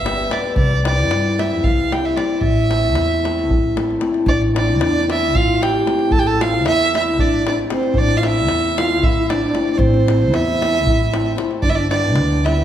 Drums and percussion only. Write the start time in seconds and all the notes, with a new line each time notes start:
0.06 davul high
0.31 davul high
0.44 davul high
0.56 davul low
0.71 davul high
0.85 davul high
0.98 davul high
1.11 davul high
1.39 davul high
1.64 davul low
1.92 davul high
2.17 davul high
2.30 davul high
2.42 davul low
2.71 davul high
2.95 davul high
3.11 davul high
3.25 davul high
3.39 davul high
3.51 davul low
3.63 davul high
3.77 davul high
3.90 davul high
4.01 davul high
4.14 davul high
4.27 davul low
4.42 davul high
4.56 davul high
4.68 davul high
4.81 davul high
5.10 davul high
5.35 davul low
5.63 davul high
5.87 davul high
5.99 davul high
6.11 davul low
6.26 davul high
6.41 davul high
6.54 davul high
6.66 davul high
6.95 davul high
7.19 davul low
7.47 davul high
7.70 davul high
7.83 davul high
7.95 davul low
8.09 davul high
8.23 davul high
8.36 davul high
8.48 davul high
8.78 davul high
9.03 davul low
9.30 davul high
9.55 davul high
9.67 davul high
9.79 davul low
9.94 davul high
10.08 davul high
10.34 davul high
10.48 davul high
10.62 davul high
10.75 davul high
10.87 davul low
11.00 davul high
11.14 davul high
11.26 davul high
11.38 davul high
11.51 davul high
11.63 davul low
11.78 davul high
11.91 davul high
12.04 davul high
12.16 davul high
12.46 davul high